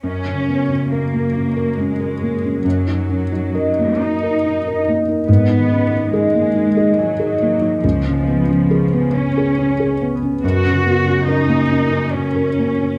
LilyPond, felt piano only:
\new Staff \with { instrumentName = "Felt piano" } { \time 3/4 \key fis \major \tempo 4 = 70 fis,16 cis'16 b16 cis'16 ais'16 ais16 cis'16 ais'16 cis'16 ais'16 ais16 cis'16 | fis,16 dis'16 cis'16 dis'16 ais'16 ais16 dis'16 ais'16 dis'16 ais'16 ais16 dis'16 | gis,16 dis'16 cis'16 dis'16 gis'16 ais16 dis'16 gis'16 dis'16 gis'16 ais16 dis'16 | cis,16 cis'16 b16 cis'16 gis'16 b16 cis'16 gis'16 cis'16 gis'16 b16 cis'16 |
fis,16 cis'16 b16 cis'16 ais'16 ais16 cis'16 ais'16 cis'16 ais'16 ais16 cis'16 | }